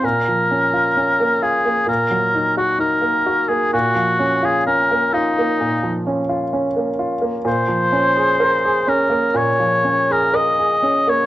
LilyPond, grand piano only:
\new Staff \with { instrumentName = "Grand piano" } { \time 4/4 \key bes \minor \tempo 4 = 64 bes,16 f16 des'16 f'16 des'16 bes16 f'16 bes16 bes,16 ges16 ees'16 ges'16 ees'16 bes16 ges'16 bes16 | bes,16 f16 des'16 f'16 des'16 bes16 f'16 bes16 bes,16 f16 des'16 f'16 des'16 bes16 f'16 bes16 | bes,16 f16 des'16 aes'16 bes'16 aes'16 des'16 bes16 bes,16 f16 des'16 aes'16 bes'16 aes'16 des'16 bes16 | }